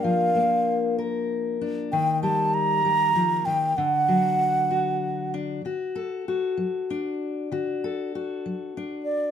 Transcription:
<<
  \new Staff \with { instrumentName = "Flute" } { \time 6/8 \key d \phrygian \tempo 4. = 64 f''4. r4. | g''8 a''8 bes''4. g''8 | fis''2~ fis''8 r8 | r2. |
r2 r8 d''8 | }
  \new Staff \with { instrumentName = "Steel-string acoustic guitar" } { \time 6/8 \key d \phrygian << { <bes d'>4. bes'4 d'8 | r2. | r4. fis'4 d'8 | fis'8 a'8 fis'4 d'4 |
fis'8 a'8 fis'4 d'4 | } \\ { f8 bes2~ bes8 | ees8 g4 g8 f8 ees8 | d8 fis2~ fis8 | d4 r8 fis4 r8 |
d4 r8 fis4 r8 | } >> }
>>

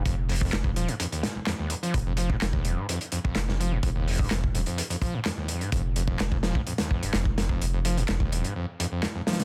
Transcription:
<<
  \new Staff \with { instrumentName = "Acid bass" } { \clef bass \time 4/4 \key ees \lydian \tempo 4 = 127 f,16 r16 f,16 f,16 ees,16 f,16 f16 f,16 f,16 ees,16 f16 f,,16 f,16 ees,16 f,16 f16 | ees,16 f,16 f16 f,16 f,16 ees,16 f,16 aes,16 f,16 r16 f,16 f,16 ees,16 f,16 f16 f,16 | f,16 ees,16 f,16 aes,16 f,16 r16 f,16 f,16 ees,16 f,16 f16 f,16 f,16 ees,16 f,16 aes,16 | f,16 r16 f,16 f,16 ees,16 f,16 f16 f,16 f,16 ees,16 f,16 aes,16 f,16 r16 f,16 f,16 |
ees,16 f,16 f16 f,16 f,16 ees,16 f,16 aes,16 f,16 r16 f,16 f,16 ees,16 f,16 f16 f,16 | }
  \new Staff \with { instrumentName = "Sub bass" } { \clef bass \time 4/4 \key ees \lydian f,,4 f,,8 ees,,16 r2 r16 | f,,4 f,,8 ees,,16 r4 f,,16 f,,4 | f,,4 f,,8 ees,,16 r2 r16 | f,,4 f,,8 ees,,16 r4 f,,16 f,,4 |
f,,4 f,,8 ees,,16 r2 r16 | }
  \new DrumStaff \with { instrumentName = "Drums" } \drummode { \time 4/4 <hh bd>8 hho16 bd16 <hc hh sn>16 bd16 hh16 hh16 hh16 hh16 <hh sn>8 <hc hh sn>8 hh16 hh16 | <hh bd>8 hh16 bd16 <hc hh sn>16 bd16 hh8 hh16 hh16 hh16 bd16 <hc hh sn>16 sn16 hh8 | <hh bd>8 hho16 bd16 <hc hh sn>16 bd16 hh16 hh16 hh16 hh16 <hh bd>8 <hc hh sn>8 hh16 hh16 | <hh bd>8 hh16 bd16 <hc hh sn>16 bd16 <hh sn>16 bd16 hh16 <hh sn>16 bd16 hh16 <hc hh sn>16 bd16 <hh sn>16 bd16 |
hh8 hh16 hh16 <hc hh sn>16 bd16 hh16 hh16 r8 hh8 <hc hh sn>8 <hh sn>32 <hh sn>32 <hh sn>16 | }
>>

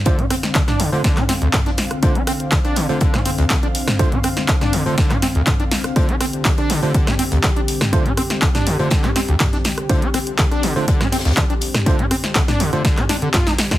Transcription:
<<
  \new Staff \with { instrumentName = "Analog synth pad" } { \time 4/4 \key d \minor \tempo 4 = 122 << { f''1~ | f''1~ | f''1 | g'1~ |
g'1~ | g'1~ | g'1 | } \\ { <d c'>1~ | <d c'>1~ | <d c'>1~ | <d c'>1~ |
<d c'>1~ | <d c'>1~ | <d c'>1 | } >> }
  \new Staff \with { instrumentName = "Tine electric piano" } { \time 4/4 \key d \minor <a d' f' c''>16 r4. <a d' f' c''>16 r2 | <a d' f' c''>16 r4. <a d' f' c''>16 r2 | <a d' f' c''>16 r4. <a d' f' c''>16 r2 | <a d' f' c''>16 r4. <a d' f' c''>16 r2 |
<a d' f' c''>16 r4. <a d' f' c''>16 r2 | <a d' f' c''>16 r4. <a d' f' c''>16 r2 | <a d' f' c''>16 r4. <a d' f' c''>16 r2 | }
  \new Staff \with { instrumentName = "Acid bass" } { \clef bass \time 4/4 \key d \minor d16 d'16 c'16 r16 d16 d'16 d16 d16 d16 d'16 c'16 d,16 d16 d'16 r8 | d16 d'16 c'16 r16 d16 d'16 d16 d16 d16 d'16 c'16 d,16 d16 d'16 r8 | d16 d'16 c'16 r16 d16 d'16 d16 d16 d16 d'16 c'16 d,16 d16 d'16 r8 | d16 d'16 c'16 r16 d16 d'16 d16 d16 d16 d'16 c'16 d,16 d16 d'16 r8 |
d16 d'16 c'16 r16 d16 d'16 d16 d16 d16 d'16 c'16 d,16 d16 d'16 r8 | d16 d'16 c'16 r16 d16 d'16 d16 d16 d16 d'16 c'16 d,16 d16 d'16 r8 | d16 d'16 c'16 r16 d16 d'16 d16 d16 d16 d'16 d'16 d16 f'16 d'16 r16 d16 | }
  \new DrumStaff \with { instrumentName = "Drums" } \drummode { \time 4/4 <hh bd>16 <hh toml>16 <hh hho ss>16 <hh sn>16 <hc hh bd sn>16 <hh ss sn toml>16 <hh hho>16 hh16 <hh bd sn>16 <hc hh ss toml>16 <hh hho sn>16 hh16 <hc hh bd ss sn toml>16 <hh sn>16 <hh hho sn>16 <hh ss>16 | <hh bd>16 hh16 <hh hho ss sn>16 hh16 <hc hh bd sn>16 <hh ss>16 <hh hho sn>16 hh16 <hh bd>16 <hh ss sn toml>16 <hh hho>16 hh16 <hc hh bd ss sn>16 hh16 <hh hho>16 <hh ss sn toml>16 | <hh bd>16 <hh toml>16 <hh hho ss>16 <hh sn>16 <hc hh bd sn>16 <hh ss sn toml>16 <hh hho>16 hh16 <hh bd sn>16 <hc hh ss toml>16 <hh hho sn>16 hh16 <hc hh bd ss toml>16 hh16 <hh hho sn>16 <hh ss>16 | <hh bd>16 hh16 <hh hho ss sn>16 hh16 <hc hh bd sn>16 <hh ss>16 <hh hho sn>16 hh16 <hh bd>16 <hh ss sn toml>16 <hh hho>16 hh16 <hc hh bd ss sn>16 hh16 <hh hho>16 <hh ss sn toml>16 |
<hh bd>16 <hh toml>16 <hh hho ss>16 <hh sn>16 <hc hh bd sn>16 <hh ss sn toml>16 <hh hho>16 hh16 <hh bd sn>16 <hc hh ss toml>16 <hh hho sn>16 hh16 <hc hh bd ss sn toml>16 <hh sn>16 <hh hho sn>16 <hh ss>16 | <hh bd>16 hh16 <hh hho ss sn>16 hh16 <hc hh bd sn>16 <hh ss>16 <hh hho sn>16 hh16 <hh bd>16 <hh ss sn toml>16 <hh hho sn>32 <hh sn>32 <hh sn>32 <hh sn>32 <hc hh bd ss sn>16 hh16 <hh hho>16 <hh ss sn toml>16 | <hh bd>16 <hh toml>16 <hh hho ss>16 <hh sn>16 <hc hh bd sn>16 <hh ss sn toml>16 <hh hho>16 hh16 <hh bd sn>16 <hc hh ss toml>16 <hh hho sn>16 hh16 <hc hh bd sn toml>16 <hh sn>16 <hh hho sn>16 <hh bd sn>16 | }
>>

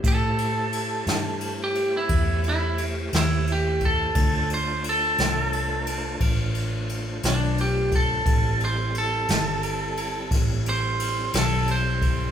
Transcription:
<<
  \new Staff \with { instrumentName = "Lead electric guitar" } { \time 12/8 \key a \minor \tempo 4. = 58 a'2~ a'16 g'8 e'8. e'8 r8 e'8 g'8 a'8~ | a'8 c''8 a'2 r4. d'8 g'8 a'8~ | a'8 c''8 a'2 r8 c''4 a'8 c''4 | }
  \new Staff \with { instrumentName = "Tonewheel organ" } { \time 12/8 \key a \minor <a e' g' c''>1. | <a d' f' c''>1. | <g c' e' a'>1. | }
  \new Staff \with { instrumentName = "Fingered electric bass" } { \clef bass \time 12/8 \key a \minor a,4. g,4. e,4. dis,4. | d,4. c,4. a,,4. b,,4. | a,,4. g,,4. a,,4. b,,4. | }
  \new DrumStaff \with { instrumentName = "Drums" } \drummode { \time 12/8 <cymc bd>8 cymr8 cymr8 <cymr sn>8 cymr8 cymr8 <bd cymr>8 cymr8 cymr8 <cymr sn>8 cymr8 <bd cymr>8 | <bd cymr>8 cymr8 cymr8 <cymr sn>8 cymr8 cymr8 <bd cymr>8 cymr8 cymr8 <cymr sn>8 cymr8 <bd cymr>8 | <bd cymr>8 cymr8 cymr8 <cymr sn>8 cymr8 cymr8 <bd cymr sn>8 cymr8 cymr8 <cymr sn>8 cymr8 <bd cymr>8 | }
>>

